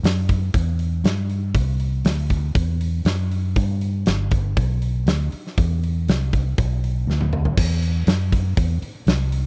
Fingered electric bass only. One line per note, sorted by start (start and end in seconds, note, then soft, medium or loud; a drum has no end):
0.03 0.52 F#2 medium
0.54 1.03 E2 medium
1.04 1.53 G2 medium
1.54 2.03 C2 medium
2.05 2.54 D2 medium
2.55 3.04 E2 medium
3.05 3.54 F#2 medium
3.56 4.05 G2 medium
4.07 4.55 G1 medium
4.57 5.05 B1 medium
5.07 5.30 D2 medium
5.33 muted fingered electric bass stroke soft
5.58 6.06 E2 medium
6.09 6.57 C2 medium
6.58 7.06 B1 medium
7.07 7.56 D2 medium
7.57 8.06 E2 medium
8.07 8.56 F#2 medium
8.57 8.81 E2 medium
8.82 muted fingered electric bass stroke soft
9.07 9.46 C2 medium